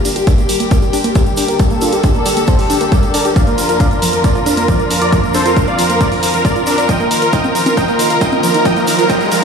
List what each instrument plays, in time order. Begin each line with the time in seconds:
Already playing: string section D3 G3 A#3 G4
0.05 synth pluck D4, supersaw synth G4, open hi-hat, shaker
0.16 synth pluck G4, supersaw synth G4, closed hi-hat, shaker
0.27 synth pluck D4, supersaw synth A#4 D5, kick, closed hi-hat, shaker
0.38 synth pluck A#3, supersaw synth G4, closed hi-hat, shaker
0.49 synth pluck G3, supersaw synth G4, open hi-hat, shaker
0.60 synth pluck A#3, supersaw synth G4, closed hi-hat, shaker
0.71 synth pluck A#3, supersaw synth G4 A#4, kick, closed hi-hat, shaker
0.82 synth pluck G4, supersaw synth G4, closed hi-hat, shaker
0.93 synth pluck D4, supersaw synth G4, open hi-hat, shaker
1.04 synth pluck A#3, supersaw synth G4, closed hi-hat, shaker
1.15 synth pluck G3, supersaw synth G4 A#4, kick, closed hi-hat, shaker
1.26 synth pluck A#3, supersaw synth G4, closed hi-hat, shaker
1.37 synth pluck D4, supersaw synth G4, open hi-hat, shaker
1.48 synth pluck G4, supersaw synth G4 A#4, closed hi-hat, shaker
1.59 synth pluck G3, supersaw synth G4, string section A4, kick, closed hi-hat, shaker
1.70 synth pluck A#3, supersaw synth G4, closed hi-hat, shaker
1.81 synth pluck D4, supersaw synth F4 A4, open hi-hat, shaker
1.93 supersaw synth G4, synth pluck G4, closed hi-hat, shaker
2.04 synth pluck D4, supersaw synth G4, kick, closed hi-hat, shaker
2.15 synth pluck A#3, supersaw synth A#4 D5, closed hi-hat, shaker
2.26 synth pluck G3, supersaw synth G4, open hi-hat, shaker
2.37 synth pluck A#3, supersaw synth G4, closed hi-hat, shaker
2.47 synth pluck A#3, supersaw synth A4 C5, kick, closed hi-hat, shaker
2.59 supersaw synth G4, synth pluck G4, open hi-hat, shaker
2.70 synth pluck D4, supersaw synth G4, open hi-hat, shaker
2.81 synth pluck A#3, supersaw synth G4, closed hi-hat, shaker
2.92 synth pluck G3, supersaw synth A#4 D5, kick, closed hi-hat, shaker
3.03 synth pluck A#3, supersaw synth G4, closed hi-hat, shaker
3.14 synth pluck D4, supersaw synth A#4 D5, open hi-hat, shaker
3.25 supersaw synth G4, synth pluck G4, closed hi-hat, shaker
3.36 string section F2 F3 F4, synth pluck F3, supersaw synth D5 F5, kick, closed hi-hat, shaker
3.47 synth pluck A#3, supersaw synth A#4, closed hi-hat, shaker
3.58 synth pluck D4, supersaw synth A#4, open hi-hat, shaker
3.69 synth pluck F4, supersaw synth A#4, closed hi-hat, shaker
3.80 synth pluck D4, supersaw synth D5 F5, kick, closed hi-hat, shaker
3.91 synth pluck A#3, supersaw synth A#4, closed hi-hat, shaker
4.02 synth pluck F3, supersaw synth A#4, open hi-hat, shaker
4.13 synth pluck A#3, supersaw synth A#4, closed hi-hat, shaker
4.24 synth pluck A#3, supersaw synth A#4 D5, kick, closed hi-hat, shaker
4.35 synth pluck F4, supersaw synth A#4, closed hi-hat, shaker
4.46 synth pluck D4, supersaw synth A#4, open hi-hat, shaker
4.57 synth pluck A#3, supersaw synth A#4, closed hi-hat, shaker
4.68 synth pluck F3, supersaw synth A#4 D5, kick, closed hi-hat, shaker
4.79 synth pluck A#3, supersaw synth A#4, closed hi-hat, shaker
4.90 synth pluck D4, supersaw synth A#4, open hi-hat, shaker
5.01 synth pluck F4, supersaw synth A#4 D5, closed hi-hat, shaker
5.12 synth pluck F3, string section C4, supersaw synth A#4, kick, closed hi-hat, shaker
5.24 synth pluck A#3, supersaw synth A#4, closed hi-hat, shaker
5.34 synth pluck D4, supersaw synth A4 C5, open hi-hat, shaker
5.45 synth pluck F4, supersaw synth A#4, closed hi-hat, shaker
5.56 synth pluck D4, supersaw synth A#4, kick, closed hi-hat, shaker
5.67 synth pluck A#3, supersaw synth D5 F5, closed hi-hat, shaker
5.79 synth pluck F3, supersaw synth A#4, open hi-hat, shaker
5.90 synth pluck A#3, supersaw synth A#4, closed hi-hat, shaker
6.01 synth pluck A#3, supersaw synth A#4 D5, kick, closed hi-hat, shaker
6.12 synth pluck F4, supersaw synth A#4, open hi-hat, shaker
6.23 synth pluck F4, supersaw synth A#4, open hi-hat, shaker
6.34 synth pluck F3, supersaw synth A#4, closed hi-hat, shaker
6.45 synth pluck A#4, supersaw synth A#4 D5, kick, closed hi-hat, shaker
6.56 synth pluck F4, supersaw synth A#4, closed hi-hat, shaker
6.66 synth pluck D4, supersaw synth D4 A#4, open hi-hat, shaker
6.78 supersaw synth A#4, synth pluck D5, closed hi-hat, shaker
6.89 string section D#3 F3 A#3, synth pluck F3, supersaw synth D#5 G5, kick, closed hi-hat, riser, shaker
7.00 synth pluck A#3, supersaw synth A#4, closed hi-hat, shaker
7.11 synth pluck D#4, supersaw synth A#4, open hi-hat, shaker
7.22 synth pluck F4, supersaw synth A#4, closed hi-hat, shaker
7.33 synth pluck D#4, supersaw synth D#5 G5, kick, closed hi-hat, shaker
7.44 synth pluck A#3, supersaw synth A#4, closed hi-hat, high conga, shaker
7.55 synth pluck F3, supersaw synth A#4, open hi-hat, shaker
7.66 synth pluck D#4, supersaw synth A#4, closed hi-hat, high conga, shaker
7.77 synth pluck F3, supersaw synth D#5 G5, kick, closed hi-hat, shaker
7.88 synth pluck A#3, supersaw synth A#4, closed hi-hat, shaker
7.99 synth pluck D#4, supersaw synth A#4, open hi-hat, shaker
8.10 synth pluck F4, supersaw synth A#4, closed hi-hat, shaker
8.21 synth pluck D#4, supersaw synth D#5 G5, kick, closed hi-hat, shaker
8.32 synth pluck A#3, supersaw synth A#4, closed hi-hat, high conga, shaker
8.43 synth pluck F3, supersaw synth A#4, open hi-hat, shaker
8.54 synth pluck D#4, supersaw synth A#4, closed hi-hat, shaker
8.65 synth pluck F3, supersaw synth D#5 G5, kick, closed hi-hat, shaker
8.77 synth pluck A#3, supersaw synth A#4, closed hi-hat, shaker
8.87 synth pluck D#4, supersaw synth A#4, open hi-hat, shaker
8.99 synth pluck F4, supersaw synth A#4, closed hi-hat, shaker
9.09 synth pluck D#4, supersaw synth D#5 G5, kick, closed hi-hat, shaker
9.21 synth pluck A#3, supersaw synth A#4, closed hi-hat, shaker
9.32 synth pluck F3, supersaw synth A#4, open hi-hat, shaker